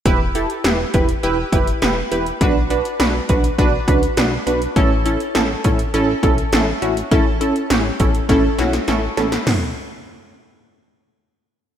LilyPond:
<<
  \new Staff \with { instrumentName = "Analog polysynth" } { \time 4/4 \key a \mixolydian \tempo 4 = 102 <e' g' b'>16 r16 <e' g' a'>16 r16 <e' g' b'>16 r16 <e' g' b'>16 r16 <e' g' b'>16 r16 <e' g' b'>16 r16 <e' g' b'>16 r16 <e' g' b'>16 r16 | <d' fis' b'>16 r16 <d' fis' b'>16 r16 <d' fis' b'>16 r16 <d' fis' b'>16 r16 <d' fis' b'>16 r16 <d' fis' b'>16 r16 <d' fis' b'>16 r16 <d' fis' b'>16 r16 | <cis' e' a'>16 r16 <cis' e' a'>16 r16 <cis' e' a'>16 r16 <cis' e' a'>16 r16 <cis' e' a'>16 r16 <cis' e' a'>16 r16 <cis' e' a'>16 r16 <cis' e' fis'>16 r16 | <cis' e' a'>16 r16 <cis' e' a'>16 r16 <cis' e' g'>16 r16 <cis' e' a'>16 r16 <cis' e' a'>16 r16 <cis' e' fis'>16 r16 <cis' e' a'>16 r16 <cis' e' a'>16 r16 |
r1 | }
  \new Staff \with { instrumentName = "Analog synth bass" } { \clef bass \time 4/4 \key a \mixolydian e,,4 e,,8 e,,8 e,,8 fis,,8 e,,8 e,,8 | b,,4 b,,8 b,,8 b,,8 cis,8 b,,8 b,,8 | a,,4 a,,8 a,,8 a,,8 b,,8 a,,8 a,,8 | a,,4 a,,8 a,,8 a,,8 b,,8 a,,8 a,,8 |
b,,8 r2. r8 | }
  \new DrumStaff \with { instrumentName = "Drums" } \drummode { \time 4/4 <hh bd>8 hh16 hh16 <hh sn>8 <hh bd>16 hh16 hh8 <hh bd>16 hh16 <hh sn>8 hh16 hh16 | <hh bd>8 hh16 hh16 <hh sn>8 <hh bd>16 hh16 <hh bd>8 <hh bd>16 hh16 <hh sn>8 hh16 hh16 | <hh bd>8 hh16 hh16 <hh sn>8 <hh bd>16 hh16 hh8 <hh bd>16 hh16 <hh sn>8 hh16 hh16 | <hh bd>8 hh16 hh16 <hh sn>8 <hh bd>16 hh16 <hh bd sn>8 <hh sn>16 <hh sn>16 <hh sn>8 <hh sn>16 <hh sn>16 |
<cymc sn tomfh>4 r4 r4 r4 | }
>>